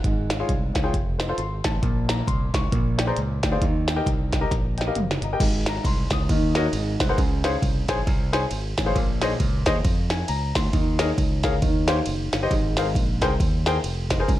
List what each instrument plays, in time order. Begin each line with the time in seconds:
Already playing: grand piano F#5
0.04 fingered electric bass G#1, grand piano G#2, kick, closed hi-hat
0.30 grand piano C#5 F5, snare, closed hi-hat
0.40 grand piano F4 G#4 C#5 F5
0.49 fingered electric bass C2, kick, closed hi-hat
0.73 fingered electric bass C#2, grand piano C#5 F5, kick, snare, closed hi-hat
0.83 grand piano F4 G#4 C#5 G5
0.94 fingered electric bass F1, kick, closed hi-hat
1.19 grand piano C5 D#5, snare, closed hi-hat
1.29 grand piano F4 A4 C5 F5
1.38 fingered electric bass G#1, grand piano C6, closed hi-hat
1.64 fingered electric bass A1, grand piano A5, kick, snare, closed hi-hat
1.82 fingered electric bass A#1, grand piano A#2, kick, closed hi-hat
2.08 grand piano A#5, snare, closed hi-hat
2.27 fingered electric bass C2, grand piano C6, kick, closed hi-hat
2.54 fingered electric bass C#2, grand piano C#6, kick, snare, closed hi-hat
2.72 fingered electric bass A#1, grand piano A#2, kick, closed hi-hat
2.98 grand piano D5 G5, snare, closed hi-hat
3.07 grand piano G#4 C5 D5 A#5
3.17 fingered electric bass C#2, closed hi-hat
3.43 fingered electric bass D2, grand piano D5 G5, kick, snare, closed hi-hat
3.52 grand piano G#4 C5 D5 F5
3.62 fingered electric bass D#2, grand piano D#3, kick, closed hi-hat
3.88 grand piano D#5 G5, snare, closed hi-hat
3.96 grand piano G4 A#4 D#5 G5
4.06 fingered electric bass C2, kick, closed hi-hat
4.32 grand piano D#5 G5, kick, snare, closed hi-hat
4.41 grand piano G4 A#4 D#5 A#5
4.51 fingered electric bass A#1, kick, snare, closed hi-hat
4.78 grand piano D#5 G5, snare, closed hi-hat
4.87 grand piano G4 A#4 D#5 F5
4.95 fingered electric bass F#1, closed hi-hat, mid tom
5.11 snare
5.22 fingered electric bass G1, grand piano D#5 A#5, closed hi-hat
5.33 grand piano G4 A#4 D#5 G5
5.40 fingered electric bass G#1, grand piano G#2, kick, crash, ride
5.66 grand piano A#5, snare, ride
5.85 fingered electric bass C2, grand piano C6, kick, ride
6.10 fingered electric bass C#2, grand piano D#6, kick, snare, ride
6.29 fingered electric bass D#2, grand piano D#3, kick, ride
6.55 grand piano F#4 A#4 C#5 D#5, snare, ride
6.73 fingered electric bass G#1, grand piano G#2, ride
7.00 fingered electric bass C2, grand piano C5 F#5, kick, snare, ride
7.09 grand piano G#4 A#4 C5 F#5
7.18 fingered electric bass C#2, grand piano C#3, kick, ride
7.44 grand piano G#4 C5 C#5 F5, snare, ride
7.62 fingered electric bass C2, kick, ride
7.88 fingered electric bass A#1, grand piano G#4 C5 C#5 G#5, kick, snare, ride
8.07 fingered electric bass C2, kick, ride
8.33 grand piano G#4 C5 C#5 G#5, snare, ride
8.51 fingered electric bass G#1, ride
8.78 fingered electric bass A1, grand piano C#5 G#5, kick, snare, ride
8.86 grand piano G#4 C5 C#5 F5
8.95 fingered electric bass A#1, grand piano A#2, kick, ride
9.22 grand piano G#4 C5 C#5 D#5, snare, ride
9.40 fingered electric bass C#2, kick, ride
9.66 fingered electric bass D#2, grand piano G#4 C5 C#5 D#5, kick, snare, ride
9.85 fingered electric bass F2, kick, ride
10.10 grand piano G#5, snare, ride
10.28 fingered electric bass C#2, grand piano A#5, ride
10.55 fingered electric bass D2, grand piano C6, kick, snare, ride
10.73 fingered electric bass D#2, grand piano D#3, kick, ride
10.99 grand piano G#4 A#4 C#5 D#5, snare, ride
11.18 fingered electric bass C#2, kick, ride
11.43 grand piano G#4 A#4 C#5 F5, kick, snare, ride
11.62 fingered electric bass D#2, grand piano D#3, kick, ride
11.88 grand piano G4 C5 C#5 F5, snare, ride
12.06 fingered electric bass F#1, ride
12.33 fingered electric bass G1, grand piano C#5 F5, snare, ride
12.42 grand piano G4 C5 C#5 D#5
12.51 fingered electric bass G#1, grand piano G#2, kick, ride
12.77 grand piano G#4 A#4 C5 F5, snare, ride
12.95 fingered electric bass A#1, kick, ride
13.22 fingered electric bass C2, grand piano G#4 A#4 C5 G5, kick, snare, ride
13.40 fingered electric bass D#2, kick, ride
13.66 grand piano G#4 A#4 C5 G5, snare, ride
13.84 fingered electric bass F1, ride
14.10 grand piano C5 D#5, kick, snare, ride
14.20 grand piano G#4 A#4 C5 G#5
14.28 fingered electric bass C#2, grand piano C#3, kick, ride